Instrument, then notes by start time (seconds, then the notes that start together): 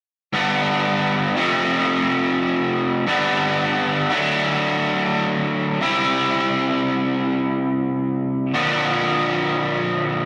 overdriven electric guitar
0.33 G2 D3 G3 B3 D4
1.36 F2 C3 F3 A3 C4
3.06 G2 D3 G3 B3 D4
4.09 D3 F#3 A3 D4
5.81 C3 G3 C4 E4
8.54 A#2 D3 F3 A#3 D4